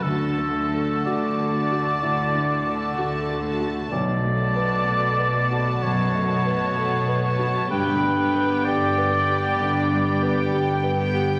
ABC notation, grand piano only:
X:1
M:4/4
L:1/8
Q:1/4=64
K:D
V:1 name="Grand piano"
(3D,, A, A (3F A F (3A,, A, A (3F A F | (3B,,, A, B (3A B F (3F,, A, B (3A B F | (3G,, G, B (3G B G (3D, G, B (3G B G |]